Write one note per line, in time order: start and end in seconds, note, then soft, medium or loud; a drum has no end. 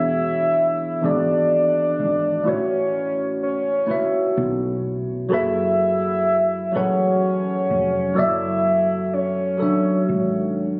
0.00 0.99 E1 medium
0.00 0.46 E3 medium
0.00 0.47 B3 medium
0.00 0.47 D4 medium
0.00 0.48 F#4 medium
0.00 0.48 G#4 medium
0.00 0.49 C#5 medium
0.00 1.05 E5 loud
1.01 1.94 G#1 medium
1.01 1.89 E3 medium
1.01 1.90 B3 medium
1.01 1.90 D4 medium
1.01 1.91 F#4 medium
1.01 1.91 G#4 medium
1.01 2.49 D5 loud
1.06 1.92 D5 medium
1.99 2.42 G#1 medium
2.43 3.85 A1 medium
2.43 3.32 A3 medium
2.43 3.33 E4 medium
2.43 3.33 F#4 medium
2.43 3.34 B4 medium
2.48 3.42 C#5 medium
2.48 3.35 C#5 medium
3.43 4.80 C#5 medium
3.86 4.75 A3 medium
3.86 4.76 E4 medium
3.86 4.76 F#4 medium
3.86 4.77 B4 medium
3.86 muted fretless electric bass stroke soft
3.91 4.77 E5 medium
4.37 5.28 B1 medium
5.29 6.70 F#1 medium
5.29 6.18 F#3 medium
5.29 6.18 F#4 medium
5.29 6.19 G#4 medium
5.29 6.19 A4 medium
5.33 6.20 B4 medium
5.33 6.71 E5 loud
5.33 6.20 E5 medium
6.72 7.66 A1 medium
6.72 7.61 F#3 medium
6.72 7.61 F#4 medium
6.72 7.62 G#4 medium
6.72 7.62 A4 medium
6.72 7.62 B4 medium
6.76 8.20 C#5 medium
6.76 7.63 F#5 medium
7.70 8.13 F1 medium
8.14 9.56 F#1 medium
8.14 9.03 F#3 medium
8.14 9.04 F#4 medium
8.14 9.04 A4 medium
8.14 9.05 C#5 medium
8.18 9.05 D5 medium
8.18 9.15 E5 loud
8.18 9.06 E5 medium
9.13 10.55 C#5 medium
9.57 10.46 F#3 medium
9.57 10.47 F#4 soft
9.57 10.47 A4 medium
9.57 10.48 C#5 medium
9.61 10.48 D4 medium
9.61 10.49 E5 medium
9.61 muted fretless electric bass stroke soft
10.09 10.80 G#1 medium